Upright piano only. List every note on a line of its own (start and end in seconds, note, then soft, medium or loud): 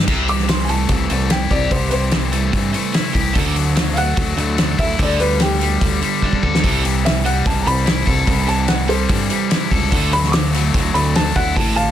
0.29 0.49 D6 medium
0.49 0.69 C6 medium
0.65 0.67 G#5 soft
0.69 1.29 A5 medium
1.32 1.51 G5 medium
1.51 1.71 D5 medium
1.72 1.91 C5 medium
1.89 1.92 B4 medium
1.94 3.12 C5 medium
3.93 3.96 F5 medium
3.98 4.77 F#5 loud
4.79 4.99 E5 medium
5.02 5.21 D5 medium
5.20 5.40 B4 medium
5.42 5.81 G4 medium
7.05 7.25 E5 medium
7.25 7.45 F#5 medium
7.47 7.66 A5 medium
7.62 7.65 A#5 medium
7.67 8.46 B5 medium
8.48 8.68 A5 medium
8.68 8.88 F#5 medium
8.89 9.67 A4 medium
8.89 9.69 C5 medium
10.13 10.33 B5 loud
10.28 10.31 C#6 medium
10.32 10.92 D6 medium
10.94 11.14 B5 medium
11.16 11.35 A5 medium
11.36 11.55 F#5 loud
11.57 11.75 A5 medium
11.76 11.91 F5 medium
11.76 11.91 A5 loud